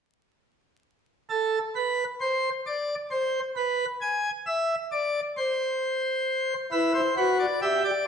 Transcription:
1.30 A4
1.76 B4
2.21 C5
2.67 D5
3.11 C5
3.57 B4
4.01 G#5
4.47 E5
4.92 D5
5.38 C5
6.72 E4 B4
6.94 C5
7.17 F#4 B4
7.40 D5
7.62 G4 E5
7.85 D5

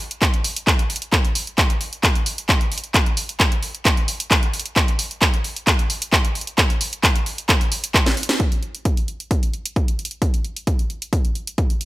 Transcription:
0.11 closed hi-hat
0.22 kick, clap, closed hi-hat
0.34 closed hi-hat
0.44 open hi-hat
0.56 closed hi-hat
0.67 kick, clap, closed hi-hat
0.79 closed hi-hat
0.90 open hi-hat
0.96 closed hi-hat
1.02 closed hi-hat
1.13 kick, clap, closed hi-hat
1.25 closed hi-hat
1.35 open hi-hat
1.47 closed hi-hat
1.58 kick, clap, closed hi-hat
1.70 closed hi-hat
1.81 open hi-hat
1.93 closed hi-hat
2.03 kick, clap, closed hi-hat
2.15 closed hi-hat
2.26 open hi-hat
2.38 closed hi-hat
2.49 kick, clap, closed hi-hat
2.61 closed hi-hat
2.72 open hi-hat
2.78 closed hi-hat
2.84 closed hi-hat
2.94 kick, clap, closed hi-hat
3.06 closed hi-hat
3.17 open hi-hat
3.29 closed hi-hat
3.40 kick, clap, closed hi-hat
3.52 closed hi-hat
3.63 open hi-hat
3.75 closed hi-hat
3.85 kick, clap, closed hi-hat
3.97 closed hi-hat
4.08 open hi-hat
4.20 closed hi-hat
4.31 kick, clap, closed hi-hat
4.43 closed hi-hat
4.54 open hi-hat
4.60 closed hi-hat
4.66 closed hi-hat
4.76 kick, clap, closed hi-hat
4.88 closed hi-hat
4.99 open hi-hat
5.11 closed hi-hat
5.22 kick, clap, closed hi-hat
5.34 closed hi-hat
5.44 open hi-hat
5.56 closed hi-hat
5.67 kick, clap, closed hi-hat
5.79 closed hi-hat
5.90 open hi-hat
6.02 closed hi-hat
6.13 kick, clap, closed hi-hat
6.25 closed hi-hat
6.35 open hi-hat
6.41 closed hi-hat
6.47 closed hi-hat
6.58 kick, clap, closed hi-hat
6.70 closed hi-hat
6.81 open hi-hat
6.93 closed hi-hat
7.04 kick, clap, closed hi-hat
7.16 closed hi-hat
7.26 open hi-hat
7.38 closed hi-hat
7.49 kick, clap, closed hi-hat
7.61 closed hi-hat
7.72 open hi-hat
7.84 closed hi-hat
7.94 kick, clap, closed hi-hat
8.06 snare, closed hi-hat
8.17 open hi-hat
8.23 closed hi-hat
8.29 snare, closed hi-hat
8.40 kick, closed hi-hat
8.52 closed hi-hat
8.63 closed hi-hat
8.75 closed hi-hat
8.85 kick, closed hi-hat
8.97 closed hi-hat
9.08 closed hi-hat
9.20 closed hi-hat
9.31 kick, closed hi-hat
9.43 closed hi-hat
9.54 closed hi-hat
9.66 closed hi-hat
9.76 kick, closed hi-hat
9.88 closed hi-hat
9.99 closed hi-hat
10.05 closed hi-hat
10.11 closed hi-hat
10.22 kick, closed hi-hat
10.34 closed hi-hat
10.45 closed hi-hat
10.56 closed hi-hat
10.67 kick, closed hi-hat
10.79 closed hi-hat
10.90 closed hi-hat
11.02 closed hi-hat
11.13 kick, closed hi-hat
11.25 closed hi-hat
11.35 closed hi-hat
11.47 closed hi-hat
11.58 kick, closed hi-hat
11.70 closed hi-hat
11.81 closed hi-hat

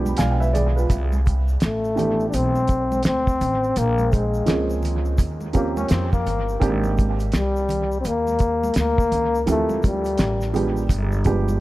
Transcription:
Already playing: B1 F3 G#3 B3 D4 G4 G5
0.06 high conga, shaker
0.17 B1 D5 F5 G#5, snare, closed hi-hat, shaker
0.40 B4 E5, shaker
0.53 G#4 D5, closed hi-hat, high conga, low conga, shaker
0.76 F4 B4, shaker
0.90 C2, kick, closed hi-hat, shaker
1.12 high conga, shaker
1.26 kick, closed hi-hat, high conga, shaker
1.48 shaker
1.60 A1 A3, snare, closed hi-hat, shaker
1.84 shaker
1.95 E3 A3 B3 D4 G4, closed hi-hat, low conga, shaker
2.20 shaker
2.29 D4, shaker
2.34 B1 C4, closed hi-hat
2.55 high conga, shaker
2.67 kick, closed hi-hat, shaker
2.92 high conga, shaker
3.03 D2 C4, snare, closed hi-hat, shaker
3.27 kick, shaker
3.41 A1, closed hi-hat, low conga, shaker
3.64 shaker
3.76 A#1 A#3, closed hi-hat, shaker
3.98 high conga, shaker
4.12 G#3, kick, closed hi-hat, high conga, shaker
4.34 shaker
4.46 C#2 F3 A#3 C4 C#4 G#4, snare, closed hi-hat, shaker
4.70 shaker
4.83 closed hi-hat, low conga, shaker
5.05 shaker
5.18 D#2, kick, closed hi-hat, shaker
5.41 high conga, shaker
5.53 F3 A#3 C4 C#4 G4, kick, closed hi-hat, shaker
5.77 C#4, high conga, shaker
5.88 F2 C4, snare, closed hi-hat, shaker
6.13 A#3, kick, shaker
6.26 G1, closed hi-hat, low conga, shaker
6.49 shaker
6.60 G#1 D#3 A#3 C4 D4 G4, kick, closed hi-hat, shaker
6.84 high conga, shaker
6.97 kick, closed hi-hat, high conga, shaker
7.20 closed hi-hat, shaker
7.32 C2 G3, snare, closed hi-hat, shaker
7.56 shaker
7.69 closed hi-hat, low conga, shaker
7.92 shaker
8.00 C4
8.04 D#2 A#3, closed hi-hat, shaker
8.27 high conga, shaker
8.39 kick, closed hi-hat, shaker
8.64 high conga, shaker
8.74 D2 A#3, snare, closed hi-hat, shaker
8.98 kick, shaker
9.12 C#2, closed hi-hat, low conga, shaker
9.35 shaker
9.46 D2 E3 A3 C4 E4 G4, closed hi-hat, shaker
9.52 F3
9.69 high conga, shaker
9.83 G3, kick, closed hi-hat, high conga, shaker
10.05 closed hi-hat, shaker
10.18 A1, snare, closed hi-hat, shaker
10.41 snare, shaker
10.53 F3 G#3 B3 D4 G4, closed hi-hat, low conga, shaker
10.77 shaker
10.89 G1, kick, closed hi-hat, shaker
11.12 high conga, shaker
11.24 F3 G#3 B3 D4 G4, kick, closed hi-hat, shaker
11.48 high conga, shaker

